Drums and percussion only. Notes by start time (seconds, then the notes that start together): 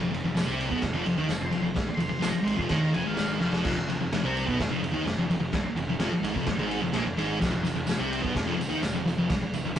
0.14 ride
0.37 snare, ride, tambourine
0.61 ride
0.71 kick
0.82 kick, snare, ride
1.06 ride
1.29 snare, ride, tambourine
1.52 ride
1.76 kick, snare, ride
2.00 ride
2.22 snare, ride, tambourine
2.47 ride
2.59 kick
2.69 kick, snare, ride
2.94 ride
3.17 snare, ride, tambourine
3.40 snare
3.53 snare
3.64 kick, snare, crash
3.90 ride
4.13 snare, ride
4.37 ride
4.48 kick
4.60 kick, snare, ride
4.84 ride
5.07 snare, ride
5.31 ride
5.53 kick, snare, ride
5.77 ride
6.00 snare, ride
6.24 ride
6.36 kick
6.47 kick, snare, ride
6.71 ride
6.94 snare, ride
7.18 ride
7.42 kick, snare, crash, tambourine
7.65 ride, tambourine
7.87 snare, ride, tambourine
8.13 ride
8.24 kick
8.36 kick, snare, ride, tambourine
8.61 ride, tambourine
8.83 snare, ride, tambourine
9.08 ride, tambourine
9.30 kick, snare, ride, tambourine
9.53 ride, tambourine
9.76 tambourine